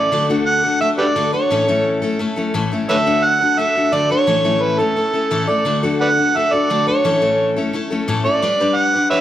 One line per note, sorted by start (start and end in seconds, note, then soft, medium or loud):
0.00 0.11 A3 soft
0.00 0.12 C#4 soft
0.00 0.12 E4 soft
0.00 0.12 A4 medium
0.00 0.27 D5 medium
0.12 0.29 D3 medium
0.12 0.29 A3 medium
0.12 0.29 D4 medium
0.12 0.29 F#4 medium
0.12 0.28 A4 medium
0.29 0.65 D3 soft
0.29 0.80 A3 medium
0.29 0.64 D4 medium
0.29 0.64 F#4 medium
0.29 0.63 A4 medium
0.46 0.79 F#5 medium
0.63 0.80 D4 soft
0.63 0.81 F#4 soft
0.63 0.81 A4 medium
0.80 0.98 A3 soft
0.80 0.99 D4 medium
0.80 0.98 F#4 medium
0.80 0.96 A4 medium
0.80 0.89 E5 medium
0.98 1.15 D4 soft
0.98 1.16 F#4 soft
0.98 1.07 G4 medium
0.98 1.15 A4 soft
0.98 1.04 B4 medium
0.98 1.30 D5 medium
1.16 1.33 D3 medium
1.16 1.33 A3 medium
1.16 1.33 D4 medium
1.16 1.32 F#4 medium
1.16 1.31 A4 medium
1.32 1.51 D4 soft
1.32 1.51 F#4 soft
1.32 1.50 A4 soft
1.32 1.99 C#5 medium
1.50 1.68 A2 medium
1.50 1.68 E3 medium
1.50 1.68 A3 medium
1.50 1.68 C#4 medium
1.50 1.67 E4 medium
1.50 1.67 A4 medium
1.68 2.03 A2 soft
1.68 2.03 E3 medium
1.68 2.04 A3 medium
1.68 2.02 C#4 medium
1.68 2.02 E4 medium
1.68 2.01 A4 medium
2.02 2.18 A3 soft
2.02 2.19 C#4 soft
2.02 2.19 E4 medium
2.02 2.19 A4 medium
2.19 2.37 A3 medium
2.19 2.36 C#4 medium
2.19 2.36 E4 medium
2.19 2.35 A4 medium
2.36 2.53 A3 soft
2.36 2.54 C#4 medium
2.36 2.54 E4 medium
2.36 2.54 A4 medium
2.54 2.71 A2 medium
2.54 2.72 E3 medium
2.54 2.72 A3 medium
2.54 2.72 C#4 medium
2.54 2.71 E4 medium
2.54 2.70 A4 medium
2.72 2.88 A3 soft
2.72 2.89 C#4 medium
2.72 2.89 E4 medium
2.72 2.89 A4 medium
2.89 3.06 D3 medium
2.89 3.06 A3 medium
2.89 3.06 D4 medium
2.89 3.05 F#4 medium
2.89 3.05 A4 medium
2.89 2.96 B4 medium
2.89 2.97 C#5 medium
2.89 3.25 E5 loud
3.06 3.42 D3 medium
3.06 3.57 A3 medium
3.06 3.41 D4 medium
3.06 3.41 F#4 medium
3.06 3.41 A4 medium
3.24 3.60 F#5 medium
3.41 3.58 D4 soft
3.41 3.58 F#4 soft
3.41 3.58 A4 medium
3.58 3.75 A3 medium
3.58 3.76 D4 medium
3.58 3.75 F#4 medium
3.58 3.74 A4 medium
3.58 3.95 E5 loud
3.75 3.91 D4 soft
3.75 3.92 F#4 soft
3.75 3.92 A4 soft
3.92 4.10 D3 medium
3.92 4.10 A3 medium
3.92 4.10 D4 medium
3.92 4.10 F#4 medium
3.92 4.08 A4 medium
3.92 4.10 D5 medium
4.10 4.27 D4 soft
4.10 4.28 F#4 soft
4.10 4.27 A4 medium
4.10 4.64 C#5 medium
4.27 4.45 A2 medium
4.27 4.44 E3 medium
4.27 4.44 A3 medium
4.27 4.43 C#4 medium
4.27 4.43 E4 medium
4.27 4.43 A4 medium
4.44 4.80 A2 medium
4.44 4.80 E3 medium
4.44 4.80 A3 medium
4.44 4.79 C#4 medium
4.44 4.78 E4 medium
4.44 4.78 A4 medium
4.62 4.81 B4 medium
4.79 4.95 A3 soft
4.79 4.96 C#4 soft
4.79 4.97 E4 soft
4.79 4.96 A4 soft
4.79 5.51 A4 medium
4.96 5.14 A3 soft
4.96 5.14 C#4 medium
4.96 5.13 E4 medium
4.96 5.12 A4 medium
5.13 5.30 A3 soft
5.13 5.31 C#4 soft
5.13 5.31 E4 soft
5.13 5.31 A4 medium
5.31 5.48 A2 medium
5.31 5.49 E3 medium
5.31 5.48 A3 medium
5.31 5.48 C#4 medium
5.31 5.47 E4 medium
5.31 5.46 A4 medium
5.48 5.64 A3 soft
5.48 5.65 C#4 soft
5.48 5.66 E4 soft
5.48 5.65 A4 medium
5.48 5.84 D5 medium
5.65 5.83 D3 medium
5.65 5.83 A3 medium
5.65 5.83 D4 medium
5.65 5.82 F#4 medium
5.65 5.82 A4 medium
5.83 6.19 D3 medium
5.83 6.34 A3 medium
5.83 6.18 D4 medium
5.83 6.17 F#4 medium
5.83 6.17 A4 medium
6.01 6.10 B4 medium
6.01 6.07 D5 medium
6.01 6.38 F#5 medium
6.17 6.34 D4 soft
6.17 6.35 F#4 soft
6.17 6.35 A4 medium
6.35 6.53 A3 medium
6.35 6.53 D4 medium
6.35 6.52 F#4 medium
6.35 6.51 A4 medium
6.35 6.55 E5 medium
6.52 6.69 D4 soft
6.52 6.69 F#4 soft
6.52 6.70 A4 medium
6.52 6.87 D5 medium
6.70 6.87 D3 medium
6.70 6.88 A3 medium
6.70 6.88 D4 medium
6.70 6.87 F#4 medium
6.70 6.86 A4 medium
6.87 7.04 D4 soft
6.87 7.05 F#4 soft
6.87 7.04 A4 soft
6.87 7.53 C#5 medium
7.04 7.22 A2 medium
7.04 7.21 E3 medium
7.04 7.21 A3 medium
7.04 7.21 C#4 medium
7.04 7.20 E4 medium
7.04 7.20 A4 medium
7.22 7.57 A2 soft
7.22 7.57 E3 medium
7.22 7.57 A3 medium
7.22 7.57 C#4 medium
7.22 7.56 E4 medium
7.22 7.55 A4 medium
7.56 7.72 A3 soft
7.56 7.73 C#4 medium
7.56 7.73 E4 medium
7.56 7.74 A4 medium
7.73 7.91 A3 medium
7.73 7.91 C#4 medium
7.73 7.90 E4 medium
7.73 7.89 A4 medium
7.90 8.07 A3 medium
7.90 8.08 C#4 medium
7.90 8.08 E4 medium
7.90 8.08 A4 medium
8.08 8.26 A2 medium
8.08 8.26 E3 medium
8.08 8.26 A3 medium
8.08 8.25 C#4 medium
8.08 8.24 E4 medium
8.08 8.23 A4 medium
8.24 8.42 A3 soft
8.24 8.43 C#4 soft
8.24 8.43 E4 medium
8.24 8.43 A4 soft
8.24 8.78 D5 medium
8.42 8.60 G3 medium
8.42 8.60 D4 medium
8.42 8.59 G4 medium
8.42 8.59 B4 medium
8.60 8.96 G3 medium
8.60 8.95 D4 medium
8.60 8.94 G4 medium
8.60 8.93 B4 medium
8.76 9.10 F#5 loud
8.94 9.11 D4 soft
8.94 9.12 G4 soft
8.94 9.12 B4 soft
9.10 9.21 G3 medium
9.10 9.21 D4 medium
9.10 9.21 G4 medium
9.10 9.19 B4 medium
9.10 9.21 B4 medium
9.10 9.18 C#5 medium
9.10 9.21 E5 medium